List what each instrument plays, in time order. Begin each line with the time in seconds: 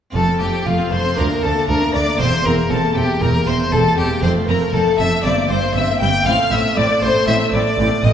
0.10 cello section F2, harpsichord C4 F4, violin section A4
0.15 double bass section F1, harpsichord F2, viola section A3, violin A4, violin section A5
0.27 viola section C4
0.40 double bass section F1, cello section F2, harpsichord F2, viola section A3, violin section G4 G5, violin G4
0.52 viola section C4
0.65 double bass section F1, cello section F2, harpsichord F2, viola section A3, violin section F4 F5, violin F4
0.79 viola section C4
0.92 double bass section F1, harpsichord F2, cello section F2, viola section A3, violin C5, violin section C5 C6
1.05 viola section C4
1.13 harpsichord A#3 D4 F4, viola section D4
1.17 cello section D2, harpsichord D2, double bass section D2, violin section A#4 A#5, violin A#4
1.31 viola section A#3
1.43 cello section D2, harpsichord D2, double bass section D2, viola section D4, violin A4, violin section A4 A5
1.56 viola section A#3
1.68 cello section D2, harpsichord D2, double bass section D2, viola section D4, violin A#4, violin section A#4 A#5
1.82 viola section A#3
1.94 harpsichord D2, cello section D2, double bass section D2, viola section D4, violin D5, violin section D5 D6
2.07 viola section A#3
2.15 harpsichord A#3 C4 G4
2.19 double bass section E1, harpsichord E2, cello section E2, viola section C4, violin C5, violin section C5 C6
2.32 viola section A#3
2.45 double bass section E1, harpsichord E2, cello section E2, viola section C4, violin A#4, violin section A#4 A#5
2.58 viola section A#3
2.70 double bass section E1, cello section E2, harpsichord E2, viola section C4, violin A4, violin section A4 A5
2.83 viola section A#3
2.96 double bass section E1, cello section E2, harpsichord E2, viola section C4, violin G4, violin section G4 G5
3.08 viola section A#3
3.21 double bass section E1, cello section E2, harpsichord E2, viola section C4, violin A#4, violin section A#4 A#5
3.34 viola section A#3
3.46 double bass section E1, cello section E2, harpsichord E2, viola section C4, violin C5, violin section C5 C6
3.59 viola section A#3
3.72 double bass section E1, cello section E2, harpsichord E2, viola section C4, violin section A4 A5, violin A4
3.85 viola section A#3
3.97 double bass section E1, cello section E2, harpsichord E2, viola section C4, violin section G4 G5, violin G4
4.10 viola section A#3
4.18 harpsichord A3 C4 F4
4.23 double bass section F1, cello section F2, harpsichord F2, viola section C4, violin section C5 C6, violin C5
4.36 viola section A3
4.48 double bass section F1, harpsichord F2, cello section F2, viola section C4, violin A#4, violin section A#4 A#5
4.62 viola section A3
4.74 double bass section F1, cello section F2, harpsichord F2, viola section C4, violin A4, violin section A4 A5
4.86 viola section A3
4.99 double bass section F1, cello section F2, harpsichord F2, viola section C4, violin section E5 E6, violin E5
5.12 viola section A3
5.20 harpsichord A#3 C4 E4
5.24 double bass section G1, cello section G2, harpsichord G2, viola section C4, violin D5, violin section D5 D6
5.37 viola section A#3
5.50 double bass section G1, cello section G2, harpsichord G2, viola section C4, violin C5, violin section C5 C6
5.62 viola section A#3
5.75 double bass section G1, cello section G2, harpsichord G2, viola section C4, violin E5, violin section E5 E6
5.88 viola section A#3
6.00 double bass section G1, cello section G2, harpsichord G2, viola section C4, violin G5, violin section G5 G6
6.13 viola section A#3
6.22 harpsichord A3 C4 F4, violin F5
6.26 double bass section A1, harpsichord A2, cello section A2, viola section C4, violin section F5 F6
6.39 viola section A3
6.51 double bass section A1, cello section A2, harpsichord A2, viola section C4, violin E5, violin section E5 E6
6.64 viola section A3
6.76 double bass section A1, cello section A2, harpsichord A2, viola section C4, violin section D5 D6, violin D5
6.90 viola section A3
7.02 double bass section A1, cello section A2, harpsichord A2, viola section C4, violin C5, violin section C5 C6
7.15 viola section A3
7.27 double bass section A1, cello section A2, harpsichord A2, viola section C4, violin E5, violin section E5 E6
7.40 viola section A3
7.53 double bass section A1, cello section A2, harpsichord A2, viola section C4, violin section D5 D6, violin D5
7.66 viola section A3
7.79 double bass section A1, cello section A2, harpsichord A2, viola section C4
7.92 viola section A3
8.04 double bass section A1, harpsichord A2, cello section A2, viola section C4, violin section D#5 D#6, violin D#5